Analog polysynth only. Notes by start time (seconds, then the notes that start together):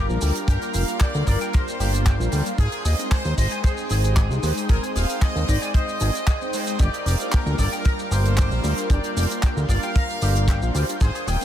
Already playing: G3 A#3 D4 F4 A#4
0.87 G3 A#3 D4 F4 A#4
1.79 G3 A#3 D4 F4 D5
2.19 G3 A#3 D4 F4 C5
2.45 G3 A#3 D4 F4 D5
2.98 G#3 C4 D#4 C5
4.04 G#3 C4 D#4 G4 C5
4.16 G#3 C4 D#4 C5
5.09 G#3 C4 D#4 C5
6.01 G#3 C4 D#4 G4 C5
6.41 G#3 C4 D#4 C5 G5
7.19 G3 A#3 D4 F4 A#4
8.25 G3 A#3 D4 F4 A#4
8.37 G3 A#3 D4 F4 A#4
9.30 G3 A#3 D4 F4 A#4
10.22 G3 A#3 D4 F4 D5
10.62 G3 A#3 D4 F4 C5
10.88 G3 A#3 D4 F4 D5
11.40 G#3 C4 D#4